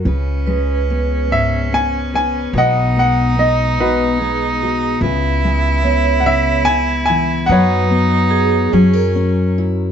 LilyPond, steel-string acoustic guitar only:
\new Staff \with { instrumentName = "Steel-string acoustic guitar" } { \time 6/8 \key cis \dorian \tempo 4. = 48 << { b'4 b4 b8 b'8 | b'4 b4 b8 fis'8 | b'4 b2 | b'4. gis'16 ais'8. e'8 | } \\ { cis8 gis4 gis,4. | b,8 gis4 b,4. | cis8 gis4 cis8 r8 e8 | fis8 b4 fis8 cis'4 | } >> }